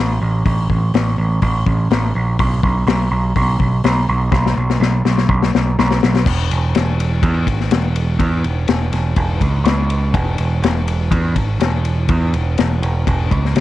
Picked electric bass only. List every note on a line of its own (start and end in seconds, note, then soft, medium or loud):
0.00 0.18 A1 loud
0.22 0.43 A1 medium
0.45 0.67 A1 medium
0.70 0.91 A1 medium
0.94 1.15 A1 medium
1.18 1.39 A1 medium
1.42 1.63 A1 loud
1.66 1.87 A1 medium
1.91 2.12 A1 medium
2.15 2.36 A#1 medium
2.39 2.60 B1 medium
2.63 2.84 B1 medium
2.87 3.08 B1 medium
3.11 3.32 B1 medium
3.36 3.57 B1 loud
3.59 3.80 B1 medium
3.84 4.05 B1 loud
4.09 4.29 B1 loud
4.32 4.53 B1 loud
4.57 4.78 B1 medium
4.80 5.01 B1 medium
5.05 5.26 B1 medium
5.29 5.50 B1 loud
5.55 5.75 B1 medium
5.79 5.99 B1 loud
6.03 6.24 B1 medium
6.26 6.50 E1 medium
6.52 6.74 E1 medium
6.76 7.22 E1 medium
7.23 7.46 E2 medium
7.47 7.71 G#1 medium
7.71 8.18 E1 medium
8.19 8.43 E2 medium
8.44 8.68 E1 medium
8.68 8.91 E1 loud
8.92 9.16 E1 medium
9.16 9.41 E1 loud
9.41 9.63 C#2 medium
9.64 10.12 C#2 medium
10.14 10.38 E1 loud
10.39 10.62 E1 medium
10.62 11.10 E1 loud
11.11 11.35 E2 medium
11.35 11.59 G#1 medium
11.60 12.07 E1 loud
12.09 12.33 E2 loud
12.34 12.58 E1 medium
12.59 12.82 E1 medium
12.82 13.06 E1 medium
13.07 13.30 E1 loud
13.31 13.55 C#2 medium
13.56 13.60 C#2 medium